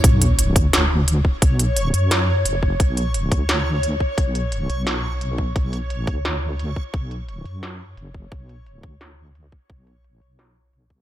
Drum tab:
HH |xxxxx-x-|xxxxx-x-|xxxxx-x-|xxxxx-x-|
SD |----o---|----o---|----o---|----o---|
BD |o--o---o|o------o|o--o---o|o------o|

HH |xxxxx-x-|xxxxx-x-|xxxxx-x-|xxxx--x-|
SD |----o---|----o---|----o---|----o---|
BD |o--o---o|o------o|o--o---o|o------o|